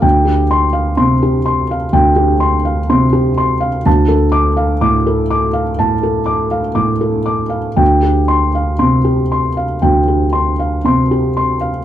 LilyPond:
<<
  \new Staff \with { instrumentName = "Felt piano" } { \time 4/4 \key c \mixolydian \tempo 4 = 61 << { r8 c'''8 r2. | r8 d'''8 r2. | r8 c'''8 r2. | } \\ { g''16 g'8 f''16 c'''16 g'16 c'''16 f''16 g''16 g'16 c'''16 f''16 c'''16 g'16 c'''16 f''16 | a''16 a'8 f''16 d'''16 a'16 d'''16 f''16 a''16 a'16 d'''16 f''16 d'''16 a'16 d'''16 f''16 | g''16 g'8 f''16 c'''16 g'16 c'''16 f''16 g''16 g'16 c'''16 f''16 c'''16 g'16 c'''16 f''16 | } >> }
  \new Staff \with { instrumentName = "Felt piano" } { \clef bass \time 4/4 \key c \mixolydian d,4 c4 d,4 c4 | d,4 a,4 a,4 a,4 | d,4 c4 d,4 c4 | }
>>